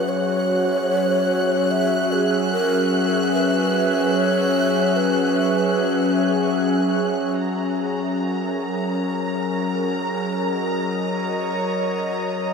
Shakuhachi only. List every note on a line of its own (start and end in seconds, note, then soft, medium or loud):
0.00 0.11 B4 medium
0.09 1.73 C#5 loud
1.71 2.14 E5 loud
2.12 2.52 G#4 medium
2.52 3.03 A#4 medium
3.32 4.17 B4 medium
4.15 4.98 C#5 loud
4.96 6.58 B4 medium